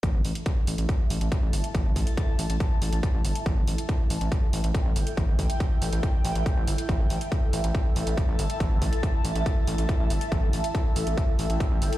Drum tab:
HH |x-oxx-oxx-oxx-ox|x-oxx-oxx-oxx-ox|x-oxx-oxx-oxx-ox|x-oxx-oxx-oxx-ox|
BD |o---o---o---o---|o-o-o---o---o---|o---o---o---o---|o-o-o---o---o---|

HH |x-oxx-oxx-oxx-ox|x-oxx-oxx-oxx-ox|x-oxx-oxx-oxx-ox|
BD |o---o---o---o---|o-o-o---o---o---|o---o---o---o---|